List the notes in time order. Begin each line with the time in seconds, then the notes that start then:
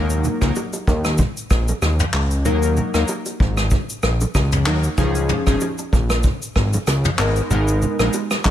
Already playing: D#2 F#3 A#3 D#4 A#4
0.10 shaker
0.24 low conga, shaker
0.41 C#2 F#3 A#3 D#4 A#4, kick, cross-stick, shaker
0.55 high bongo, shaker
0.73 high bongo, shaker
0.87 D#2, kick, low bongo, shaker
1.04 cross-stick, shaker
1.18 kick, low conga, shaker
1.37 shaker
1.50 A#1, kick, cross-stick, shaker
1.68 low bongo, shaker
1.82 D#2, cross-stick, high bongo, shaker
1.99 mid tom, shaker
2.14 C#2, cross-stick, clap
2.31 shaker
2.45 D#2 F#3 A#3 D#4 A#4, low conga, shaker
2.62 shaker
2.77 low conga, shaker
2.94 D#2 F#3 A#3 D#4 A#4, cross-stick, shaker
3.08 high bongo, shaker
3.26 high bongo, shaker
3.40 G#1, kick, low bongo
3.57 cross-stick, shaker
3.71 kick, low conga, shaker
3.90 shaker
4.03 A#1, cross-stick, shaker
4.21 low bongo, shaker
4.35 C#2, kick, cross-stick, high bongo, shaker
4.52 mid tom, shaker
4.66 D#2 F#3 A#3 D#4 A#4, cross-stick, clap
4.83 shaker
4.98 C#2 F3 C#4 D#4 G#4, kick, low conga, shaker
5.15 shaker
5.29 mid tom, low conga, shaker
5.46 G#1 F3 C#4 D#4 G#4, kick, cross-stick, shaker
5.61 high bongo, shaker
5.78 high bongo, shaker
5.93 A#1, kick, low bongo, shaker
6.10 cross-stick, shaker
6.23 kick, low conga, shaker
6.42 shaker
6.55 G#1, kick, cross-stick, open hi-hat
6.73 low bongo, shaker
6.87 C#2, cross-stick, hi-hat pedal, high bongo, shaker
7.05 mid tom, shaker
7.19 G#1 G#3 B3 D#4 A#4, cross-stick, clap, shaker
7.36 shaker
7.50 G#1 G#3 B3 D#4 A#4, low conga, shaker
7.68 shaker
7.82 low conga, shaker
7.99 A#1 G#3 B3 D#4 A#4, cross-stick, shaker
8.13 high bongo, shaker
8.31 cross-stick, high bongo, shaker
8.45 G#1, kick, clap, low bongo